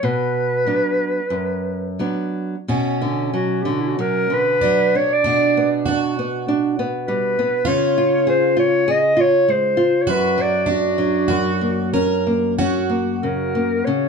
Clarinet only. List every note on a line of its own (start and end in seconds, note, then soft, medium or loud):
0.05 2.01 B4 medium
3.36 3.63 F#4 medium
3.61 3.71 G4 medium
3.70 3.82 F#4 medium
3.81 3.90 E4 medium
3.88 4.02 F#4 medium
4.01 4.35 A#4 medium
4.34 4.98 B4 medium
4.96 5.14 C#5 medium
5.13 5.73 D5 medium
7.08 7.69 B4 medium
7.67 8.27 C#5 loud
8.29 8.56 C5 medium
8.59 8.92 C#5 loud
8.91 9.22 D#5 loud
9.21 9.52 C#5 loud
9.51 10.03 C5 medium
10.02 10.12 C#5 medium
10.11 10.43 B4 medium
10.41 10.70 D5 medium
10.71 12.24 F#4 medium
13.22 13.86 A#4 medium
13.85 14.09 C#5 medium